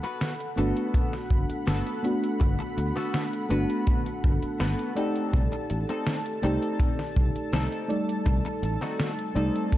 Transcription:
Already playing: analog synth pad A4 F#5 B5
0.03 clean electric guitar B3 F#4 B4, closed hi-hat
0.21 snare, closed hi-hat
0.40 closed hi-hat
0.56 fretless electric bass G1, fm electric piano A3 B3 D4 F#4, clean electric guitar B3 F#4 A4, closed hi-hat
0.77 closed hi-hat
0.94 kick, closed hi-hat
1.13 snare, closed hi-hat
1.31 fretless electric bass G1, kick
1.50 muted fretless electric bass stroke, closed hi-hat
1.67 fretless electric bass G1, clean electric guitar B3 F#4 A4, snare, closed hi-hat
1.87 closed hi-hat
2.03 fm electric piano A3 B3 D4 F#4, closed hi-hat
2.24 closed hi-hat
2.40 fretless electric bass G1, muted clean electric guitar stroke, kick, closed hi-hat
2.59 muted clean electric guitar stroke, closed hi-hat
2.77 fretless electric bass D2, muted clean electric guitar stroke, closed hi-hat
2.96 clean electric guitar B3 F#4 A4, snare, closed hi-hat
3.14 snare, closed hi-hat
3.33 closed hi-hat
3.49 fretless electric bass G1, fm electric piano A3 B3 D4 F#4, clean electric guitar B3 F#4 B4, closed hi-hat
3.70 closed hi-hat
3.87 kick, closed hi-hat
4.06 closed hi-hat
4.24 fretless electric bass G1, kick
4.42 muted fretless electric bass stroke, closed hi-hat
4.60 fretless electric bass G1, clean electric guitar B3 F#4 B4, snare, closed hi-hat
4.79 closed hi-hat
4.95 fm electric piano A3 D#4 G4 D5, clean electric guitar C4 D#4 A4, analog synth pad A5, closed hi-hat
5.16 closed hi-hat
5.33 fretless electric bass C2, kick, closed hi-hat
5.52 muted clean electric guitar stroke, closed hi-hat
5.70 fretless electric bass A1, muted clean electric guitar stroke, closed hi-hat
5.89 clean electric guitar C4 D#4 A4, closed hi-hat
6.06 snare, closed hi-hat
6.26 closed hi-hat
6.42 fretless electric bass C2, fm electric piano A3 D#4 G4 D5, clean electric guitar C4 D#4 A4, closed hi-hat
6.62 closed hi-hat
6.80 kick, closed hi-hat
6.99 snare, closed hi-hat
7.16 fretless electric bass C2, kick
7.35 muted fretless electric bass stroke, closed hi-hat
7.53 fretless electric bass C2, clean electric guitar C4 D#4 A4, snare, closed hi-hat
7.72 closed hi-hat
7.88 fm electric piano G3 A3 D#4 D5, closed hi-hat
8.09 closed hi-hat
8.26 fretless electric bass C2, muted clean electric guitar stroke, kick, closed hi-hat
8.45 muted clean electric guitar stroke, closed hi-hat
8.63 fretless electric bass A1, muted clean electric guitar stroke, closed hi-hat
8.81 clean electric guitar C4 D#4 F#4, snare, closed hi-hat
9.00 snare, closed hi-hat
9.19 closed hi-hat
9.34 fretless electric bass C2, fm electric piano G3 A3 D#4 D5, clean electric guitar C4 D#4 A4, closed hi-hat
9.56 closed hi-hat
9.72 kick, closed hi-hat

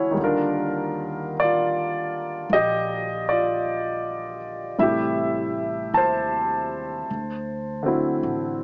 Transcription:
Already playing: upright bass E2, grand piano D3 G#3 C#4 E4 F#4 C#5
0.11 grand piano D#3 G3
0.17 upright bass D#2, grand piano D3
0.22 grand piano D4 F4 A#4
1.40 grand piano F4 D5
2.50 upright bass A#1, grand piano D#5
2.54 grand piano G4
3.29 grand piano F4 D5
4.78 upright bass A1, grand piano C3 G3 A3 E4 E5
4.83 grand piano G4
5.94 upright bass D#2, grand piano C5 A5
7.10 upright bass D2
7.83 grand piano D3 F#3 C4
7.88 grand piano E4
8.23 upright bass A1

